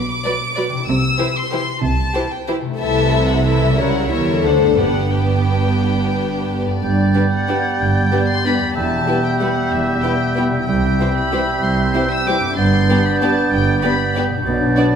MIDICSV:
0, 0, Header, 1, 13, 480
1, 0, Start_track
1, 0, Key_signature, 1, "major"
1, 0, Tempo, 320684
1, 1316, Time_signature, 3, 2, 24, 8
1, 6120, Tempo, 344828
1, 9480, Tempo, 328407
1, 10920, Tempo, 320000
1, 16680, Tempo, 313808
1, 22228, End_track
2, 0, Start_track
2, 0, Title_t, "Flute"
2, 0, Program_c, 0, 73
2, 9965, Note_on_c, 0, 91, 44
2, 12768, Note_off_c, 0, 91, 0
2, 12816, Note_on_c, 0, 91, 44
2, 15647, Note_off_c, 0, 91, 0
2, 15715, Note_on_c, 0, 91, 46
2, 18530, Note_off_c, 0, 91, 0
2, 18581, Note_on_c, 0, 91, 55
2, 21952, Note_off_c, 0, 91, 0
2, 22228, End_track
3, 0, Start_track
3, 0, Title_t, "Violin section"
3, 0, Program_c, 1, 48
3, 0, Note_on_c, 1, 86, 79
3, 1310, Note_off_c, 1, 86, 0
3, 1320, Note_on_c, 1, 88, 76
3, 2021, Note_off_c, 1, 88, 0
3, 2044, Note_on_c, 1, 84, 74
3, 2747, Note_on_c, 1, 81, 76
3, 2751, Note_off_c, 1, 84, 0
3, 3439, Note_on_c, 1, 79, 59
3, 3445, Note_off_c, 1, 81, 0
3, 3694, Note_off_c, 1, 79, 0
3, 4173, Note_on_c, 1, 81, 71
3, 4861, Note_off_c, 1, 81, 0
3, 4888, Note_on_c, 1, 78, 62
3, 5150, Note_off_c, 1, 78, 0
3, 5172, Note_on_c, 1, 76, 52
3, 5640, Note_on_c, 1, 78, 65
3, 5644, Note_off_c, 1, 76, 0
3, 6112, Note_off_c, 1, 78, 0
3, 6127, Note_on_c, 1, 76, 60
3, 6602, Note_off_c, 1, 76, 0
3, 6612, Note_on_c, 1, 78, 55
3, 7065, Note_off_c, 1, 78, 0
3, 7081, Note_on_c, 1, 78, 58
3, 7550, Note_off_c, 1, 78, 0
3, 7566, Note_on_c, 1, 79, 51
3, 9732, Note_on_c, 1, 74, 46
3, 9736, Note_off_c, 1, 79, 0
3, 10624, Note_off_c, 1, 74, 0
3, 10682, Note_on_c, 1, 78, 56
3, 11384, Note_on_c, 1, 79, 57
3, 11392, Note_off_c, 1, 78, 0
3, 12114, Note_off_c, 1, 79, 0
3, 12125, Note_on_c, 1, 84, 66
3, 12362, Note_off_c, 1, 84, 0
3, 12379, Note_on_c, 1, 83, 56
3, 12832, Note_on_c, 1, 81, 63
3, 12836, Note_off_c, 1, 83, 0
3, 13537, Note_on_c, 1, 79, 59
3, 13542, Note_off_c, 1, 81, 0
3, 13796, Note_off_c, 1, 79, 0
3, 13801, Note_on_c, 1, 78, 62
3, 14264, Note_off_c, 1, 78, 0
3, 14270, Note_on_c, 1, 76, 58
3, 14738, Note_on_c, 1, 79, 60
3, 14748, Note_off_c, 1, 76, 0
3, 15240, Note_off_c, 1, 79, 0
3, 15472, Note_on_c, 1, 79, 59
3, 16370, Note_off_c, 1, 79, 0
3, 16431, Note_on_c, 1, 83, 64
3, 17143, Note_off_c, 1, 83, 0
3, 17145, Note_on_c, 1, 84, 56
3, 17873, Note_off_c, 1, 84, 0
3, 17891, Note_on_c, 1, 88, 66
3, 18127, Note_off_c, 1, 88, 0
3, 18130, Note_on_c, 1, 86, 68
3, 18578, Note_on_c, 1, 84, 68
3, 18591, Note_off_c, 1, 86, 0
3, 19293, Note_off_c, 1, 84, 0
3, 19296, Note_on_c, 1, 83, 64
3, 19551, Note_off_c, 1, 83, 0
3, 19559, Note_on_c, 1, 81, 69
3, 20021, Note_off_c, 1, 81, 0
3, 20028, Note_on_c, 1, 79, 67
3, 20495, Note_off_c, 1, 79, 0
3, 20503, Note_on_c, 1, 83, 64
3, 20990, Note_off_c, 1, 83, 0
3, 22228, End_track
4, 0, Start_track
4, 0, Title_t, "Oboe"
4, 0, Program_c, 2, 68
4, 9970, Note_on_c, 2, 74, 44
4, 12771, Note_off_c, 2, 74, 0
4, 12819, Note_on_c, 2, 76, 44
4, 15649, Note_off_c, 2, 76, 0
4, 15699, Note_on_c, 2, 76, 47
4, 18522, Note_off_c, 2, 76, 0
4, 18567, Note_on_c, 2, 74, 51
4, 21009, Note_off_c, 2, 74, 0
4, 21466, Note_on_c, 2, 74, 57
4, 22228, Note_off_c, 2, 74, 0
4, 22228, End_track
5, 0, Start_track
5, 0, Title_t, "Violin section"
5, 0, Program_c, 3, 48
5, 368, Note_on_c, 3, 74, 45
5, 370, Note_on_c, 3, 71, 44
5, 488, Note_off_c, 3, 74, 0
5, 490, Note_off_c, 3, 71, 0
5, 839, Note_on_c, 3, 74, 43
5, 842, Note_on_c, 3, 71, 46
5, 959, Note_off_c, 3, 74, 0
5, 962, Note_off_c, 3, 71, 0
5, 1773, Note_on_c, 3, 67, 44
5, 1781, Note_on_c, 3, 72, 45
5, 1892, Note_off_c, 3, 67, 0
5, 1901, Note_off_c, 3, 72, 0
5, 2274, Note_on_c, 3, 72, 42
5, 2276, Note_on_c, 3, 67, 47
5, 2394, Note_off_c, 3, 72, 0
5, 2396, Note_off_c, 3, 67, 0
5, 3210, Note_on_c, 3, 72, 45
5, 3211, Note_on_c, 3, 67, 46
5, 3329, Note_off_c, 3, 72, 0
5, 3331, Note_off_c, 3, 67, 0
5, 3710, Note_on_c, 3, 67, 43
5, 3713, Note_on_c, 3, 72, 43
5, 3830, Note_off_c, 3, 67, 0
5, 3832, Note_off_c, 3, 72, 0
5, 4173, Note_on_c, 3, 76, 52
5, 4178, Note_on_c, 3, 69, 50
5, 5102, Note_off_c, 3, 76, 0
5, 5105, Note_off_c, 3, 69, 0
5, 5178, Note_on_c, 3, 69, 43
5, 5180, Note_on_c, 3, 76, 45
5, 5638, Note_off_c, 3, 69, 0
5, 5639, Note_off_c, 3, 76, 0
5, 5660, Note_on_c, 3, 73, 44
5, 5661, Note_on_c, 3, 70, 41
5, 6130, Note_off_c, 3, 73, 0
5, 6131, Note_off_c, 3, 70, 0
5, 6159, Note_on_c, 3, 70, 39
5, 6167, Note_on_c, 3, 73, 42
5, 6609, Note_off_c, 3, 70, 0
5, 6613, Note_off_c, 3, 73, 0
5, 6627, Note_on_c, 3, 72, 38
5, 6633, Note_on_c, 3, 69, 41
5, 7072, Note_on_c, 3, 71, 40
5, 7078, Note_on_c, 3, 67, 39
5, 7083, Note_off_c, 3, 72, 0
5, 7087, Note_off_c, 3, 69, 0
5, 7543, Note_off_c, 3, 67, 0
5, 7547, Note_off_c, 3, 71, 0
5, 7560, Note_on_c, 3, 67, 39
5, 7564, Note_on_c, 3, 71, 40
5, 9688, Note_off_c, 3, 67, 0
5, 9690, Note_off_c, 3, 71, 0
5, 10424, Note_on_c, 3, 67, 35
5, 10426, Note_on_c, 3, 71, 37
5, 10541, Note_off_c, 3, 67, 0
5, 10543, Note_off_c, 3, 71, 0
5, 10928, Note_on_c, 3, 67, 36
5, 10934, Note_on_c, 3, 71, 37
5, 11048, Note_off_c, 3, 67, 0
5, 11054, Note_off_c, 3, 71, 0
5, 11870, Note_on_c, 3, 71, 36
5, 11872, Note_on_c, 3, 67, 35
5, 11990, Note_off_c, 3, 71, 0
5, 11992, Note_off_c, 3, 67, 0
5, 12377, Note_on_c, 3, 67, 38
5, 12379, Note_on_c, 3, 71, 39
5, 12497, Note_off_c, 3, 67, 0
5, 12499, Note_off_c, 3, 71, 0
5, 13312, Note_on_c, 3, 67, 36
5, 13315, Note_on_c, 3, 71, 39
5, 13432, Note_off_c, 3, 67, 0
5, 13435, Note_off_c, 3, 71, 0
5, 13800, Note_on_c, 3, 71, 38
5, 13802, Note_on_c, 3, 67, 35
5, 13920, Note_off_c, 3, 71, 0
5, 13922, Note_off_c, 3, 67, 0
5, 14750, Note_on_c, 3, 67, 40
5, 14750, Note_on_c, 3, 71, 35
5, 14870, Note_off_c, 3, 67, 0
5, 14870, Note_off_c, 3, 71, 0
5, 15244, Note_on_c, 3, 67, 39
5, 15245, Note_on_c, 3, 71, 38
5, 15364, Note_off_c, 3, 67, 0
5, 15365, Note_off_c, 3, 71, 0
5, 16203, Note_on_c, 3, 72, 37
5, 16206, Note_on_c, 3, 67, 39
5, 16323, Note_off_c, 3, 72, 0
5, 16326, Note_off_c, 3, 67, 0
5, 16685, Note_on_c, 3, 72, 41
5, 16692, Note_on_c, 3, 67, 39
5, 16808, Note_off_c, 3, 72, 0
5, 16815, Note_off_c, 3, 67, 0
5, 17627, Note_on_c, 3, 67, 40
5, 17636, Note_on_c, 3, 72, 38
5, 17750, Note_off_c, 3, 67, 0
5, 17758, Note_off_c, 3, 72, 0
5, 18132, Note_on_c, 3, 72, 40
5, 18139, Note_on_c, 3, 67, 40
5, 18255, Note_off_c, 3, 72, 0
5, 18261, Note_off_c, 3, 67, 0
5, 19071, Note_on_c, 3, 67, 43
5, 19077, Note_on_c, 3, 74, 42
5, 19194, Note_off_c, 3, 67, 0
5, 19199, Note_off_c, 3, 74, 0
5, 19577, Note_on_c, 3, 67, 45
5, 19578, Note_on_c, 3, 74, 40
5, 19699, Note_off_c, 3, 67, 0
5, 19700, Note_off_c, 3, 74, 0
5, 20507, Note_on_c, 3, 74, 42
5, 20514, Note_on_c, 3, 67, 44
5, 20630, Note_off_c, 3, 74, 0
5, 20636, Note_off_c, 3, 67, 0
5, 21007, Note_on_c, 3, 74, 46
5, 21017, Note_on_c, 3, 67, 43
5, 21130, Note_off_c, 3, 74, 0
5, 21139, Note_off_c, 3, 67, 0
5, 21952, Note_on_c, 3, 74, 45
5, 21959, Note_on_c, 3, 66, 48
5, 22074, Note_off_c, 3, 74, 0
5, 22081, Note_off_c, 3, 66, 0
5, 22228, End_track
6, 0, Start_track
6, 0, Title_t, "Harp"
6, 0, Program_c, 4, 46
6, 0, Note_on_c, 4, 47, 38
6, 0, Note_on_c, 4, 62, 37
6, 0, Note_on_c, 4, 66, 32
6, 0, Note_on_c, 4, 71, 35
6, 1039, Note_on_c, 4, 48, 47
6, 1104, Note_on_c, 4, 60, 35
6, 1174, Note_on_c, 4, 64, 35
6, 1199, Note_off_c, 4, 47, 0
6, 1235, Note_off_c, 4, 62, 0
6, 1240, Note_on_c, 4, 67, 37
6, 1268, Note_off_c, 4, 66, 0
6, 1300, Note_off_c, 4, 71, 0
6, 3892, Note_off_c, 4, 48, 0
6, 3910, Note_on_c, 4, 48, 42
6, 3973, Note_on_c, 4, 57, 33
6, 4022, Note_off_c, 4, 64, 0
6, 4040, Note_on_c, 4, 64, 33
6, 4111, Note_on_c, 4, 69, 36
6, 4157, Note_off_c, 4, 67, 0
6, 5369, Note_on_c, 4, 49, 36
6, 5432, Note_on_c, 4, 55, 33
6, 5484, Note_off_c, 4, 64, 0
6, 5502, Note_on_c, 4, 64, 32
6, 5525, Note_off_c, 4, 48, 0
6, 5553, Note_off_c, 4, 60, 0
6, 5556, Note_off_c, 4, 57, 0
6, 5570, Note_on_c, 4, 70, 33
6, 5625, Note_off_c, 4, 69, 0
6, 6352, Note_on_c, 4, 50, 40
6, 6417, Note_on_c, 4, 60, 32
6, 6476, Note_on_c, 4, 62, 35
6, 6492, Note_off_c, 4, 49, 0
6, 6522, Note_off_c, 4, 55, 0
6, 6539, Note_on_c, 4, 69, 32
6, 6554, Note_off_c, 4, 64, 0
6, 6586, Note_off_c, 4, 70, 0
6, 6823, Note_on_c, 4, 43, 32
6, 6885, Note_on_c, 4, 59, 29
6, 6930, Note_off_c, 4, 62, 0
6, 6947, Note_on_c, 4, 62, 26
6, 6965, Note_off_c, 4, 50, 0
6, 6997, Note_off_c, 4, 60, 0
6, 7010, Note_on_c, 4, 71, 27
6, 7058, Note_off_c, 4, 69, 0
6, 9679, Note_off_c, 4, 43, 0
6, 9697, Note_on_c, 4, 43, 35
6, 9748, Note_off_c, 4, 59, 0
6, 9766, Note_on_c, 4, 59, 31
6, 9813, Note_off_c, 4, 62, 0
6, 9831, Note_on_c, 4, 62, 33
6, 9876, Note_off_c, 4, 71, 0
6, 9894, Note_on_c, 4, 71, 30
6, 12551, Note_on_c, 4, 40, 35
6, 12602, Note_off_c, 4, 59, 0
6, 12620, Note_on_c, 4, 59, 31
6, 12686, Note_on_c, 4, 64, 30
6, 12709, Note_off_c, 4, 43, 0
6, 12755, Note_on_c, 4, 67, 30
6, 12777, Note_off_c, 4, 62, 0
6, 15438, Note_on_c, 4, 48, 38
6, 15505, Note_on_c, 4, 60, 31
6, 15550, Note_off_c, 4, 64, 0
6, 15568, Note_on_c, 4, 64, 34
6, 15590, Note_off_c, 4, 40, 0
6, 15619, Note_off_c, 4, 67, 0
6, 15625, Note_off_c, 4, 59, 0
6, 15637, Note_on_c, 4, 67, 33
6, 15693, Note_off_c, 4, 71, 0
6, 18312, Note_on_c, 4, 43, 41
6, 18383, Note_on_c, 4, 59, 35
6, 18453, Note_on_c, 4, 62, 35
6, 18465, Note_off_c, 4, 48, 0
6, 18499, Note_off_c, 4, 60, 0
6, 18503, Note_off_c, 4, 67, 0
6, 18521, Note_on_c, 4, 67, 36
6, 18531, Note_off_c, 4, 64, 0
6, 21201, Note_on_c, 4, 47, 44
6, 21251, Note_off_c, 4, 59, 0
6, 21269, Note_on_c, 4, 59, 37
6, 21323, Note_off_c, 4, 62, 0
6, 21341, Note_on_c, 4, 62, 37
6, 21351, Note_off_c, 4, 43, 0
6, 21408, Note_on_c, 4, 66, 38
6, 21456, Note_off_c, 4, 67, 0
6, 22228, Note_off_c, 4, 47, 0
6, 22228, Note_off_c, 4, 59, 0
6, 22228, Note_off_c, 4, 62, 0
6, 22228, Note_off_c, 4, 66, 0
6, 22228, End_track
7, 0, Start_track
7, 0, Title_t, "Viola section"
7, 0, Program_c, 5, 48
7, 368, Note_on_c, 5, 66, 43
7, 371, Note_on_c, 5, 54, 42
7, 488, Note_off_c, 5, 66, 0
7, 491, Note_off_c, 5, 54, 0
7, 860, Note_on_c, 5, 54, 45
7, 861, Note_on_c, 5, 66, 46
7, 980, Note_off_c, 5, 54, 0
7, 981, Note_off_c, 5, 66, 0
7, 1783, Note_on_c, 5, 52, 44
7, 1784, Note_on_c, 5, 64, 44
7, 1903, Note_off_c, 5, 52, 0
7, 1903, Note_off_c, 5, 64, 0
7, 2286, Note_on_c, 5, 64, 44
7, 2289, Note_on_c, 5, 52, 46
7, 2406, Note_off_c, 5, 64, 0
7, 2409, Note_off_c, 5, 52, 0
7, 3227, Note_on_c, 5, 52, 45
7, 3227, Note_on_c, 5, 64, 44
7, 3346, Note_off_c, 5, 52, 0
7, 3347, Note_off_c, 5, 64, 0
7, 3714, Note_on_c, 5, 64, 46
7, 3715, Note_on_c, 5, 52, 46
7, 3834, Note_off_c, 5, 52, 0
7, 3834, Note_off_c, 5, 64, 0
7, 4177, Note_on_c, 5, 64, 47
7, 4186, Note_on_c, 5, 52, 48
7, 5104, Note_off_c, 5, 64, 0
7, 5108, Note_off_c, 5, 52, 0
7, 5179, Note_on_c, 5, 52, 48
7, 5179, Note_on_c, 5, 64, 49
7, 5638, Note_off_c, 5, 52, 0
7, 5638, Note_off_c, 5, 64, 0
7, 5654, Note_on_c, 5, 64, 42
7, 5655, Note_on_c, 5, 55, 43
7, 6111, Note_off_c, 5, 55, 0
7, 6113, Note_off_c, 5, 64, 0
7, 6128, Note_on_c, 5, 55, 42
7, 6130, Note_on_c, 5, 64, 39
7, 6594, Note_off_c, 5, 55, 0
7, 6595, Note_off_c, 5, 64, 0
7, 6612, Note_on_c, 5, 57, 42
7, 6616, Note_on_c, 5, 62, 43
7, 7054, Note_off_c, 5, 62, 0
7, 7071, Note_on_c, 5, 62, 36
7, 7072, Note_on_c, 5, 59, 37
7, 7076, Note_off_c, 5, 57, 0
7, 7540, Note_off_c, 5, 59, 0
7, 7541, Note_off_c, 5, 62, 0
7, 7557, Note_on_c, 5, 59, 43
7, 7558, Note_on_c, 5, 62, 42
7, 9686, Note_off_c, 5, 59, 0
7, 9687, Note_off_c, 5, 62, 0
7, 10433, Note_on_c, 5, 55, 35
7, 10433, Note_on_c, 5, 62, 37
7, 10549, Note_off_c, 5, 55, 0
7, 10550, Note_off_c, 5, 62, 0
7, 10921, Note_on_c, 5, 62, 42
7, 10928, Note_on_c, 5, 55, 36
7, 11041, Note_off_c, 5, 62, 0
7, 11048, Note_off_c, 5, 55, 0
7, 11874, Note_on_c, 5, 55, 36
7, 11878, Note_on_c, 5, 62, 37
7, 11994, Note_off_c, 5, 55, 0
7, 11998, Note_off_c, 5, 62, 0
7, 12372, Note_on_c, 5, 62, 40
7, 12373, Note_on_c, 5, 55, 39
7, 12492, Note_off_c, 5, 62, 0
7, 12493, Note_off_c, 5, 55, 0
7, 13296, Note_on_c, 5, 55, 38
7, 13296, Note_on_c, 5, 64, 39
7, 13416, Note_off_c, 5, 55, 0
7, 13416, Note_off_c, 5, 64, 0
7, 13801, Note_on_c, 5, 55, 36
7, 13805, Note_on_c, 5, 64, 39
7, 13921, Note_off_c, 5, 55, 0
7, 13925, Note_off_c, 5, 64, 0
7, 14744, Note_on_c, 5, 64, 38
7, 14745, Note_on_c, 5, 55, 39
7, 14864, Note_off_c, 5, 64, 0
7, 14865, Note_off_c, 5, 55, 0
7, 15245, Note_on_c, 5, 55, 41
7, 15246, Note_on_c, 5, 64, 41
7, 15365, Note_off_c, 5, 55, 0
7, 15366, Note_off_c, 5, 64, 0
7, 16187, Note_on_c, 5, 55, 41
7, 16190, Note_on_c, 5, 64, 39
7, 16307, Note_off_c, 5, 55, 0
7, 16310, Note_off_c, 5, 64, 0
7, 16672, Note_on_c, 5, 64, 41
7, 16675, Note_on_c, 5, 55, 43
7, 16795, Note_off_c, 5, 64, 0
7, 16798, Note_off_c, 5, 55, 0
7, 17616, Note_on_c, 5, 55, 42
7, 17617, Note_on_c, 5, 64, 41
7, 17738, Note_off_c, 5, 55, 0
7, 17740, Note_off_c, 5, 64, 0
7, 18121, Note_on_c, 5, 64, 41
7, 18127, Note_on_c, 5, 55, 42
7, 18244, Note_off_c, 5, 64, 0
7, 18249, Note_off_c, 5, 55, 0
7, 19077, Note_on_c, 5, 62, 41
7, 19079, Note_on_c, 5, 59, 40
7, 19199, Note_off_c, 5, 62, 0
7, 19202, Note_off_c, 5, 59, 0
7, 19577, Note_on_c, 5, 59, 45
7, 19581, Note_on_c, 5, 62, 43
7, 19699, Note_off_c, 5, 59, 0
7, 19703, Note_off_c, 5, 62, 0
7, 20521, Note_on_c, 5, 62, 46
7, 20526, Note_on_c, 5, 59, 46
7, 20643, Note_off_c, 5, 62, 0
7, 20648, Note_off_c, 5, 59, 0
7, 21017, Note_on_c, 5, 59, 46
7, 21017, Note_on_c, 5, 62, 48
7, 21139, Note_off_c, 5, 59, 0
7, 21140, Note_off_c, 5, 62, 0
7, 21946, Note_on_c, 5, 59, 47
7, 21950, Note_on_c, 5, 62, 44
7, 22069, Note_off_c, 5, 59, 0
7, 22073, Note_off_c, 5, 62, 0
7, 22228, End_track
8, 0, Start_track
8, 0, Title_t, "Clarinet"
8, 0, Program_c, 6, 71
8, 9974, Note_on_c, 6, 59, 45
8, 12773, Note_off_c, 6, 59, 0
8, 12822, Note_on_c, 6, 59, 45
8, 15713, Note_on_c, 6, 60, 47
8, 15736, Note_off_c, 6, 59, 0
8, 18587, Note_on_c, 6, 62, 50
8, 18610, Note_off_c, 6, 60, 0
8, 21068, Note_off_c, 6, 62, 0
8, 21483, Note_on_c, 6, 62, 57
8, 22228, Note_off_c, 6, 62, 0
8, 22228, End_track
9, 0, Start_track
9, 0, Title_t, "French horn section"
9, 0, Program_c, 7, 60
9, 10426, Note_on_c, 7, 59, 37
9, 10430, Note_on_c, 7, 55, 40
9, 10604, Note_off_c, 7, 59, 0
9, 10607, Note_off_c, 7, 55, 0
9, 10915, Note_on_c, 7, 55, 40
9, 10917, Note_on_c, 7, 59, 38
9, 11087, Note_off_c, 7, 55, 0
9, 11089, Note_off_c, 7, 59, 0
9, 11872, Note_on_c, 7, 59, 37
9, 11875, Note_on_c, 7, 55, 39
9, 12050, Note_off_c, 7, 59, 0
9, 12052, Note_off_c, 7, 55, 0
9, 12375, Note_on_c, 7, 59, 41
9, 12378, Note_on_c, 7, 55, 39
9, 12541, Note_off_c, 7, 59, 0
9, 12544, Note_off_c, 7, 55, 0
9, 13308, Note_on_c, 7, 59, 41
9, 13310, Note_on_c, 7, 55, 39
9, 13488, Note_off_c, 7, 59, 0
9, 13490, Note_off_c, 7, 55, 0
9, 13807, Note_on_c, 7, 59, 41
9, 13810, Note_on_c, 7, 55, 39
9, 13978, Note_off_c, 7, 59, 0
9, 13980, Note_off_c, 7, 55, 0
9, 14739, Note_on_c, 7, 55, 41
9, 14742, Note_on_c, 7, 59, 41
9, 14920, Note_off_c, 7, 55, 0
9, 14922, Note_off_c, 7, 59, 0
9, 15239, Note_on_c, 7, 55, 39
9, 15242, Note_on_c, 7, 59, 40
9, 15410, Note_off_c, 7, 55, 0
9, 15412, Note_off_c, 7, 59, 0
9, 16189, Note_on_c, 7, 60, 41
9, 16194, Note_on_c, 7, 52, 40
9, 16367, Note_off_c, 7, 60, 0
9, 16370, Note_off_c, 7, 52, 0
9, 16674, Note_on_c, 7, 60, 41
9, 16676, Note_on_c, 7, 52, 43
9, 16844, Note_off_c, 7, 60, 0
9, 16846, Note_off_c, 7, 52, 0
9, 17634, Note_on_c, 7, 52, 43
9, 17642, Note_on_c, 7, 60, 43
9, 17811, Note_off_c, 7, 52, 0
9, 17817, Note_off_c, 7, 60, 0
9, 18115, Note_on_c, 7, 52, 43
9, 18116, Note_on_c, 7, 60, 42
9, 18285, Note_off_c, 7, 52, 0
9, 18286, Note_off_c, 7, 60, 0
9, 19059, Note_on_c, 7, 59, 44
9, 19066, Note_on_c, 7, 55, 43
9, 19239, Note_off_c, 7, 59, 0
9, 19245, Note_off_c, 7, 55, 0
9, 19569, Note_on_c, 7, 59, 45
9, 19577, Note_on_c, 7, 55, 44
9, 19738, Note_off_c, 7, 59, 0
9, 19744, Note_off_c, 7, 55, 0
9, 20504, Note_on_c, 7, 59, 44
9, 20511, Note_on_c, 7, 55, 44
9, 20683, Note_off_c, 7, 59, 0
9, 20689, Note_off_c, 7, 55, 0
9, 21013, Note_on_c, 7, 55, 48
9, 21013, Note_on_c, 7, 59, 50
9, 21181, Note_off_c, 7, 55, 0
9, 21181, Note_off_c, 7, 59, 0
9, 21483, Note_on_c, 7, 62, 59
9, 21486, Note_on_c, 7, 54, 59
9, 22228, Note_off_c, 7, 54, 0
9, 22228, Note_off_c, 7, 62, 0
9, 22228, End_track
10, 0, Start_track
10, 0, Title_t, "Bassoon"
10, 0, Program_c, 8, 70
10, 9968, Note_on_c, 8, 55, 39
10, 12770, Note_off_c, 8, 55, 0
10, 12840, Note_on_c, 8, 55, 47
10, 15659, Note_off_c, 8, 55, 0
10, 15715, Note_on_c, 8, 55, 44
10, 18530, Note_off_c, 8, 55, 0
10, 18600, Note_on_c, 8, 59, 49
10, 21025, Note_off_c, 8, 59, 0
10, 21487, Note_on_c, 8, 59, 53
10, 22228, Note_off_c, 8, 59, 0
10, 22228, End_track
11, 0, Start_track
11, 0, Title_t, "Cello section"
11, 0, Program_c, 10, 48
11, 0, Note_on_c, 10, 47, 60
11, 257, Note_off_c, 10, 47, 0
11, 1301, Note_on_c, 10, 48, 62
11, 1675, Note_off_c, 10, 48, 0
11, 2737, Note_on_c, 10, 48, 66
11, 3107, Note_off_c, 10, 48, 0
11, 4176, Note_on_c, 10, 48, 50
11, 5579, Note_off_c, 10, 48, 0
11, 5629, Note_on_c, 10, 49, 46
11, 6115, Note_off_c, 10, 49, 0
11, 6117, Note_on_c, 10, 52, 41
11, 6586, Note_on_c, 10, 50, 41
11, 6598, Note_off_c, 10, 52, 0
11, 7063, Note_off_c, 10, 50, 0
11, 7075, Note_on_c, 10, 43, 42
11, 9677, Note_off_c, 10, 43, 0
11, 9956, Note_on_c, 10, 43, 48
11, 10349, Note_off_c, 10, 43, 0
11, 11380, Note_on_c, 10, 43, 48
11, 11779, Note_off_c, 10, 43, 0
11, 12817, Note_on_c, 10, 40, 52
11, 13213, Note_off_c, 10, 40, 0
11, 14261, Note_on_c, 10, 40, 49
11, 14660, Note_off_c, 10, 40, 0
11, 15691, Note_on_c, 10, 36, 53
11, 16092, Note_off_c, 10, 36, 0
11, 17130, Note_on_c, 10, 36, 53
11, 17531, Note_off_c, 10, 36, 0
11, 18576, Note_on_c, 10, 43, 55
11, 18973, Note_off_c, 10, 43, 0
11, 20029, Note_on_c, 10, 43, 57
11, 20423, Note_off_c, 10, 43, 0
11, 21472, Note_on_c, 10, 47, 60
11, 21863, Note_off_c, 10, 47, 0
11, 22228, End_track
12, 0, Start_track
12, 0, Title_t, "Timpani"
12, 0, Program_c, 11, 47
12, 7085, Note_on_c, 11, 43, 44
12, 7763, Note_off_c, 11, 43, 0
12, 22228, End_track
13, 0, Start_track
13, 0, Title_t, "Double bass section"
13, 0, Program_c, 12, 48
13, 0, Note_on_c, 12, 35, 60
13, 257, Note_off_c, 12, 35, 0
13, 1316, Note_on_c, 12, 36, 61
13, 1683, Note_off_c, 12, 36, 0
13, 2735, Note_on_c, 12, 36, 67
13, 3106, Note_off_c, 12, 36, 0
13, 4169, Note_on_c, 12, 36, 50
13, 5576, Note_off_c, 12, 36, 0
13, 5638, Note_on_c, 12, 37, 44
13, 6120, Note_off_c, 12, 37, 0
13, 6123, Note_on_c, 12, 40, 40
13, 6600, Note_off_c, 12, 40, 0
13, 6600, Note_on_c, 12, 38, 38
13, 7070, Note_off_c, 12, 38, 0
13, 7078, Note_on_c, 12, 31, 44
13, 9679, Note_off_c, 12, 31, 0
13, 9952, Note_on_c, 12, 31, 49
13, 10347, Note_off_c, 12, 31, 0
13, 11392, Note_on_c, 12, 31, 50
13, 11785, Note_off_c, 12, 31, 0
13, 12817, Note_on_c, 12, 28, 49
13, 13213, Note_off_c, 12, 28, 0
13, 14266, Note_on_c, 12, 28, 50
13, 14663, Note_off_c, 12, 28, 0
13, 15702, Note_on_c, 12, 36, 49
13, 16098, Note_off_c, 12, 36, 0
13, 17126, Note_on_c, 12, 36, 52
13, 17530, Note_off_c, 12, 36, 0
13, 18595, Note_on_c, 12, 31, 50
13, 18982, Note_off_c, 12, 31, 0
13, 20029, Note_on_c, 12, 31, 52
13, 20423, Note_off_c, 12, 31, 0
13, 21467, Note_on_c, 12, 35, 61
13, 21861, Note_off_c, 12, 35, 0
13, 22228, End_track
0, 0, End_of_file